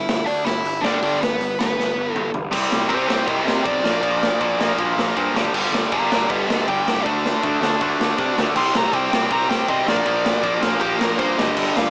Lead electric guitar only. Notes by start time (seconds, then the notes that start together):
Already playing: E4 E5
0.26 D4 D5
0.44 E4 E5
0.81 D4 D5
1.21 B3 B4
1.59 B3 B4
2.12 A4
2.89 G4 C5
3.08 G4 C5
3.27 A#4 D#5
3.47 A#4 D#5
3.66 D5
5.92 F4 A#4
6.11 F4 A#4
6.30 B4 D#5
6.49 B4 D#5
6.68 G5
8.57 C6
8.77 A#5
8.95 G5
9.32 A#5
9.49 G5
9.69 D#5
9.88 D5
10.81 G4
10.99 A#4
11.18 C5
11.38 D#5
11.77 F5